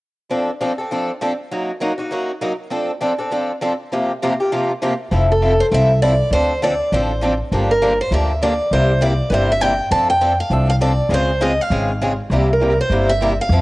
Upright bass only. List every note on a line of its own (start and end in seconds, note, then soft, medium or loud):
5.11 5.59 F1 medium
5.72 6.20 C2 medium
6.31 6.79 D2 medium
6.92 7.40 A1 medium
7.51 7.99 G1 medium
8.11 8.59 D2 medium
8.71 9.19 C2 medium
9.30 9.79 G1 medium
9.91 10.39 F2 medium
10.50 10.98 C2 medium
11.09 11.58 C#2 medium
11.70 12.18 G#1 medium
12.30 12.78 C2 medium
12.90 13.38 G1 medium
13.49 13.61 F2 medium